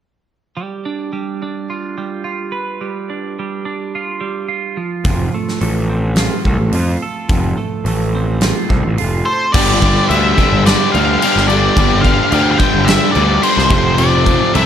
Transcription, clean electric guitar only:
0.57 G3
0.85 D4
1.13 G3
1.42 D4
1.70 F4
1.98 G3
2.24 F4
2.52 B4
2.81 G3
3.10 D4
3.39 G3
3.65 D4
3.95 F4
4.21 G3
4.48 F4
4.77 F3
5.06 F3
5.34 A3
5.61 A3
5.90 C4
6.18 F4
6.46 A3
6.75 F4
7.02 A4
7.30 F3
7.58 A3
7.87 A3
8.15 C4
8.43 F4
8.69 A3
8.98 F4
9.26 A4

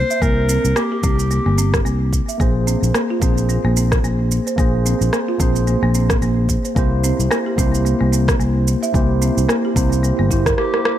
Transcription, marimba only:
0.10 E5
0.22 A#3
0.49 C4
0.77 A#3
0.92 G4
1.04 C4
1.31 A#3
1.46 A#3
1.58 C4
1.85 A#3
2.29 E5
2.40 A#3
2.67 C4
2.94 A#3
3.10 F4
3.22 C4
3.49 A#3
3.65 A#3
3.77 C4
4.04 A#3
4.47 C5
4.58 A#3
4.86 C4
5.13 A#3
5.28 F4
5.40 C4
5.67 A#3
5.83 A#3
5.95 C4
6.22 A#3
6.65 C5
6.76 A#3
7.04 C4
7.31 A#3
7.46 G4
7.58 C4
7.85 A#3
8.01 A#3
8.12 C4
8.40 A#3
8.83 E5
8.94 A#3
9.22 C4
9.49 A#3
9.65 G4
9.76 C4
10.03 A#3
10.19 A#3
10.31 E4
10.47 A#4

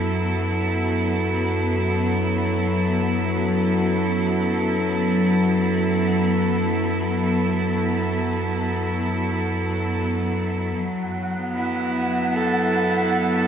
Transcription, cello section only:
Already playing: F#3 B3 E4 A4
10.78 F#3
11.38 B3
11.56 E4
12.32 A4

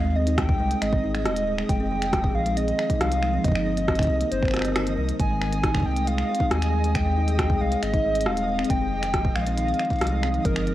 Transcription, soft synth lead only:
Already playing: F5
0.16 D#5
0.38 G5
0.81 D#5
1.25 D#5
1.69 G5
2.35 F5
2.57 D#5
3.00 F5
3.44 D#5
4.32 C5
5.20 G#5
5.85 G5
6.07 F5
6.51 G#5
6.95 G5
7.61 F5
7.83 D#5
8.26 F5
8.70 G5
9.36 F5
10.45 A#4

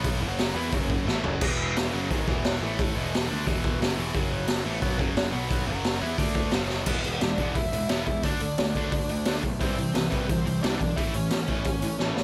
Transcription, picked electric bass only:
Already playing: B1
0.21 F#1
0.55 E2
0.73 F#1
1.07 A1
1.24 F#1
1.42 E1
1.94 F#1
2.12 G#1
2.28 E1
2.61 A1
2.97 E1
3.32 D2
3.47 E1
3.81 F#1
3.98 E1
4.15 F#1
4.66 A1
4.82 B1
5.00 F#1
5.33 B1
5.69 F#1
6.02 E2
6.19 D2
6.53 F#1
6.87 E1
7.04 E1
7.21 E1
7.39 E1
7.57 E1
7.72 E1
7.90 E1
8.07 E2
8.24 D2
8.41 D2
8.59 D2
8.76 D2
8.93 D2
9.11 D2
9.28 D2
9.44 B1
9.61 C2
9.79 C2
9.96 C2
10.13 C2
10.30 C2
10.47 C2
10.63 C2
10.81 B1
10.98 A1
11.15 A1
11.32 A1
11.49 A1
11.66 A1
11.81 A1
11.99 A1
12.16 A1

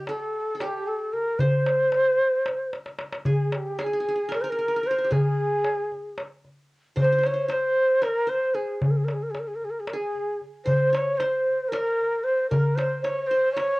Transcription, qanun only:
Already playing: G4 D#5
0.09 A4
0.55 A4
0.61 G4
1.40 C5
3.26 G#4
3.79 G#4
3.86 G#4
3.93 G#4
4.00 G#4
4.09 G#4
4.16 G#4
4.29 A#4
4.44 A#4
4.52 A#4
4.59 A#4
4.68 A#4
4.76 A#4
4.83 A#4
4.91 A#4
4.98 A#4
5.05 G4
5.11 G#4
6.96 C5
7.04 C5
7.12 C5
7.19 C5
7.26 C5
7.34 C5
7.48 C5
8.02 A#4
8.27 C5
8.54 G#4
9.93 G#4
10.66 C5
10.93 C#5
11.20 C5
11.72 A#4
12.51 A#4
12.77 C5
13.04 C#5
13.31 C5
13.56 C#5

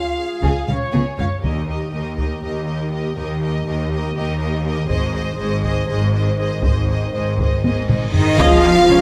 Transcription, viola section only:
0.18 G#4
0.69 C#5
1.18 C#5
1.44 G4
1.69 G4
1.93 G4
2.19 G4
2.44 G4
2.68 G4
2.92 G4
3.18 G4
3.41 G4
3.67 G4
3.91 G4
4.15 G4
4.40 G4
4.64 G4
4.88 G#4
5.13 G#4
5.38 G#4
5.63 G#4
5.88 G#4
6.13 G#4
6.38 G#4
6.63 G#4
6.88 G#4
7.14 G#4
7.39 G#4
7.64 G#4
7.88 G#4
8.14 G#4
8.39 G#4 D#5
8.90 D#4 C#5

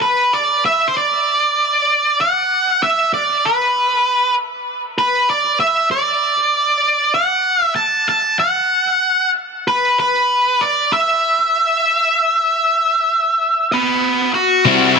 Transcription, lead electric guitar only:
0.02 B4
0.33 D5
0.66 E5
0.88 C5
0.97 D5
2.21 F#5
2.83 E5
3.14 D5
3.45 B4
4.98 B4
5.30 D5
5.60 E5
5.91 D5
7.14 F#5
7.76 A5
8.09 A5
8.39 F#5
9.68 B4
10.00 B4
10.61 D5
10.93 E5
13.72 F#4 D#5
14.34 F#4 F#5
14.95 E4 E5

